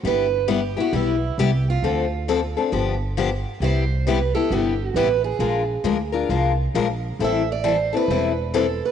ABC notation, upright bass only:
X:1
M:4/4
L:1/8
Q:"Swing" 1/4=134
K:G
V:1 name="Upright bass" clef=bass
G,,,4 B,,,2 C,,2 | D,,4 G,,,4 | C,,4 G,,,2 A,,,2 | _B,,,2 D,,2 C,,2 B,,,2 |
A,,,4 E,,,4 |]